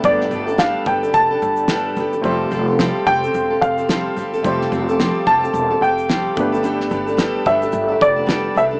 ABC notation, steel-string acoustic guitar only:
X:1
M:4/4
L:1/16
Q:"Swing 16ths" 1/4=109
K:Gmix
V:1 name="Steel-string acoustic guitar"
[G,B,DGA]2 [B,DGA] [DGA] [G,B,DGA]2 [B,DGA] [DGA]2 [DGA]3 [G,B,DGA]2 [B,DGA] [DGA] | [F,G,CGA]2 [G,CGA] [CGA] [F,G,CGA]2 [G,CGA] [CGA]2 [CGA]2 [CGA] [F,G,CGA]2 [G,CGA] [CGA] | [F,G,CGA]2 [G,CGA] [CGA] [F,G,CGA]2 [G,CGA] [CGA]2 [CGA]3 [F,G,CGA]2 [B,DGA] [DGA] | [G,B,DGA]2 [B,DGA] [DGA] [G,B,DGA]2 [B,DGA] [DGA]2 [DGA]2 [DGA] [G,B,DGA]2 [B,DGA] [DGA] |]